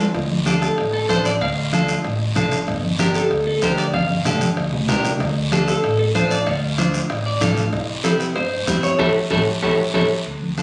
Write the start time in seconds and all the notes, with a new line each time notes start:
0.14 D2, bombo low, bombo rim, cowbell, long guiro
0.31 high conga
0.46 D4 F4 G4 A4, bombo rim, cowbell, high conga, short guiro
0.61 A4, bombo rim, short guiro
0.78 A1, bombo rim, cowbell, long guiro
0.93 A4
1.09 A1 D4 F4 A4 C5, bombo low, bombo rim, cowbell, high conga, short guiro
1.25 D5, bombo rim, short guiro
1.41 D2 F5, bombo low, bombo rim, cowbell, long guiro
1.73 D4 F4 A4, bombo rim, cowbell, high conga, short guiro
1.88 bombo rim, short guiro
2.04 A1, bombo rim, cowbell, long guiro
2.36 A1 D4 F4 A4, bombo low, bombo rim, cowbell, high conga, low conga, short guiro
2.51 bombo rim, short guiro
2.67 G1, bombo low, bombo rim, cowbell, long guiro
2.83 high conga
2.98 D4 G4 A#4, bombo rim, cowbell, high conga, short guiro
3.14 A4, bombo rim, short guiro
3.30 D2, bombo rim, cowbell, long guiro
3.47 A4
3.62 D2 D4 G4 A#4 C5, bombo low, bombo rim, cowbell, high conga, short guiro
3.78 D5, bombo rim, short guiro
3.93 G1 F5, bombo low, bombo rim, cowbell, high conga, long guiro
4.10 high conga
4.25 D4 G4 A4, bombo rim, cowbell, low conga, short guiro
4.41 bombo rim, high conga, short guiro
4.57 D2, bombo rim, cowbell, long guiro
4.73 low conga
4.89 C2 D4 G4 A#4, bombo low, bombo rim, cowbell, low conga, low timbale, short guiro
5.04 bombo rim, low conga, short guiro
5.20 D2, bombo low, bombo rim, cowbell, long guiro
5.52 D4 F4 G4 A4, bombo rim, cowbell, high conga, short guiro
5.68 A4, bombo rim, short guiro
5.84 A1, bombo rim, cowbell, long guiro
5.99 A4
6.15 A1 D4 F4 A4 C5, bombo low, bombo rim, cowbell, high conga, short guiro
6.31 D5, bombo rim, short guiro
6.46 D2 F5, bombo low, bombo rim, cowbell, long guiro
6.78 D4 F4 C5, bombo rim, cowbell, high conga, short guiro
6.94 bombo rim, short guiro
7.10 A1, bombo rim, cowbell, long guiro
7.26 D5
7.41 A1 D4 F4 A4 F5, bombo low, bombo rim, cowbell, high conga, low conga, short guiro
7.57 bombo rim, short guiro
7.73 C2, bombo low, bombo rim, cowbell, long guiro
8.04 C4 E4 G4 A4, bombo rim, cowbell, high conga, short guiro
8.20 A#4, bombo rim, short guiro
8.36 G2 C5, bombo rim, cowbell, long guiro
8.67 G2 C4 E4 G4, bombo low, bombo rim, cowbell, high conga, short guiro
8.83 C#5, bombo rim, short guiro
8.99 A1 E4 G4 A4 C#5 E5, bombo low, high conga, high timbale, long guiro
9.31 A1 E4 G4 A4 C#5 E5, bombo low, high conga, high timbale, long guiro
9.62 A1 E4 G4 A4 C#5 E5, bombo low, high conga, high timbale, long guiro
9.94 A1 E4 G4 A4 C#5 E5, bombo low, high conga, high timbale, long guiro
10.26 D2, bombo low, high timbale, long guiro
10.42 high conga
10.57 D4 F4 A4, bombo rim, high conga, high timbale, short guiro